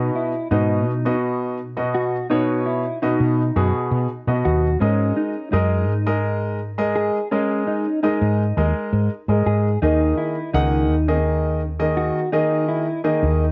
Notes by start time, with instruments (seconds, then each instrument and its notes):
Already playing: grand piano B2 B3 F#4 D#5, clean electric guitar D#4
0.15 clean electric guitar E4
0.51 fretless electric bass G#2, grand piano B2 B3 F#4 D#5, clean electric guitar D#4
0.87 fretless electric bass B2
1.05 grand piano B2 B3 F#4 D#5
1.77 grand piano B2 B3 F#4 D#5
1.94 clean electric guitar F#4
2.30 grand piano B2 B3 F#4 C#5, clean electric guitar D#4
2.66 clean electric guitar E4
3.02 grand piano B2 B3 F#4 D#5, clean electric guitar D#4
3.20 fretless electric bass B2
3.56 fretless electric bass F#2, grand piano B2 B3 F#4 G#4
3.91 fretless electric bass B2
4.27 fretless electric bass B2, grand piano B2 B3 F#4 D#5
4.45 fretless electric bass D#2, clean electric guitar F#4
4.80 fretless electric bass G#2, grand piano G#3 G#4 A#4 D#5, clean electric guitar C#4
5.17 clean electric guitar D#4
5.52 fretless electric bass F#2, grand piano G#3 G#4 A#4 D#5, clean electric guitar D#4
5.89 fretless electric bass G#2
6.06 grand piano G#3 G#4 A#4 D#5
6.78 grand piano G#3 G#4 A#4 D#5
6.95 clean electric guitar G#4
7.31 grand piano G#3 G#4 A#4 D#5, clean electric guitar C#4
7.67 clean electric guitar D#4
8.03 grand piano G#3 G#4 A#4 D#5, clean electric guitar D#4
8.21 fretless electric bass G#2
8.57 fretless electric bass D#2, grand piano G#3 G#4 A#4 D#5
8.93 fretless electric bass G#2
9.28 fretless electric bass G#2, grand piano G#3 G#4 A#4 D#5
9.46 fretless electric bass G#2, clean electric guitar G#4
9.82 fretless electric bass D#2, grand piano D#3 A#3 G#4 D#5, clean electric guitar D#4
10.18 clean electric guitar E4
10.54 fretless electric bass C#2, grand piano D#3 A#3 G#4 F#5, clean electric guitar D#4
10.90 fretless electric bass D#2
11.08 grand piano D#3 A#3 G#4 D#5
11.79 grand piano D#3 A#3 G#4 D#5
11.97 clean electric guitar F#4
12.32 grand piano D#3 A#3 G#4 D#5, clean electric guitar D#4
12.68 clean electric guitar E4
13.04 grand piano D#3 A#3 G#4 D#5, clean electric guitar D#4
13.23 fretless electric bass D#2